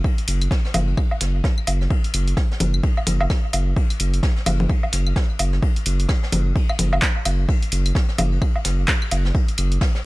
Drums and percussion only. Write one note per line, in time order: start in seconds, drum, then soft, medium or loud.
0.04 kick loud
0.04 ride medium
0.18 open hi-hat soft
0.28 open hi-hat medium
0.28 ride medium
0.41 open hi-hat soft
0.41 claves medium
0.51 kick loud
0.51 snare loud
0.51 ride medium
0.65 snare soft
0.74 open hi-hat medium
0.74 ride medium
0.74 low conga medium
0.74 low woodblock medium
0.87 ride soft
0.97 kick loud
0.97 ride medium
0.97 claves medium
1.11 low woodblock medium
1.21 snare medium
1.21 open hi-hat medium
1.21 ride medium
1.34 ride soft
1.44 kick loud
1.44 snare loud
1.44 ride medium
1.58 claves medium
1.67 open hi-hat medium
1.67 ride medium
1.67 low woodblock medium
1.81 snare soft
1.90 kick loud
1.90 ride medium
2.04 open hi-hat soft
2.14 open hi-hat loud
2.14 ride medium
2.14 claves medium
2.28 open hi-hat soft
2.37 kick loud
2.37 snare loud
2.37 ride medium
2.51 snare medium
2.60 open hi-hat medium
2.60 ride medium
2.60 low conga medium
2.74 claves medium
2.83 kick loud
2.83 ride medium
2.97 low woodblock medium
3.07 open hi-hat medium
3.07 ride medium
3.07 low conga medium
3.21 low woodblock medium
3.30 kick loud
3.30 snare loud
3.30 ride medium
3.30 claves medium
3.53 open hi-hat loud
3.53 ride medium
3.53 low woodblock medium
3.77 kick loud
3.77 ride medium
3.90 open hi-hat soft
3.90 claves medium
4.00 open hi-hat loud
4.00 ride medium
4.14 open hi-hat soft
4.23 kick loud
4.23 snare loud
4.23 ride medium
4.36 snare soft
4.46 open hi-hat medium
4.46 ride medium
4.46 low conga medium
4.46 claves medium
4.46 low woodblock medium
4.60 ride soft
4.60 low conga medium
4.70 kick loud
4.70 ride medium
4.83 low woodblock medium
4.92 snare medium
4.92 open hi-hat medium
4.92 ride medium
5.06 ride soft
5.06 claves medium
5.16 kick loud
5.16 snare loud
5.16 ride medium
5.39 open hi-hat medium
5.39 ride medium
5.39 low woodblock medium
5.53 snare soft
5.62 kick loud
5.62 ride loud
5.76 open hi-hat soft
5.85 open hi-hat medium
5.85 ride medium
6.00 open hi-hat soft
6.09 kick loud
6.09 snare loud
6.09 ride medium
6.09 claves medium
6.23 snare medium
6.32 open hi-hat medium
6.32 ride medium
6.32 low conga medium
6.56 kick loud
6.56 ride medium
6.69 claves medium
6.69 low woodblock medium
6.79 open hi-hat medium
6.79 ride medium
6.79 low conga medium
6.93 low woodblock medium
7.01 kick loud
7.01 snare loud
7.01 clap loud
7.01 ride medium
7.25 open hi-hat medium
7.25 ride medium
7.25 claves medium
7.25 low woodblock soft
7.49 kick loud
7.49 ride medium
7.62 open hi-hat soft
7.71 open hi-hat medium
7.71 ride medium
7.86 open hi-hat soft
7.86 claves medium
7.95 kick loud
7.95 snare loud
7.95 ride medium
8.09 snare soft
8.18 open hi-hat medium
8.18 ride medium
8.18 low conga medium
8.18 low woodblock medium
8.32 ride soft
8.41 kick loud
8.41 ride medium
8.41 claves medium
8.56 low woodblock medium
8.65 snare medium
8.65 open hi-hat medium
8.65 ride medium
8.79 ride soft
8.88 kick loud
8.88 snare loud
8.88 clap loud
8.88 ride medium
9.02 claves medium
9.11 open hi-hat medium
9.11 ride medium
9.11 low woodblock soft
9.25 snare soft
9.35 kick loud
9.35 ride medium
9.48 open hi-hat soft
9.57 open hi-hat medium
9.57 ride medium
9.57 claves medium
9.72 open hi-hat soft
9.81 kick loud
9.81 snare loud
9.81 ride medium
9.95 snare medium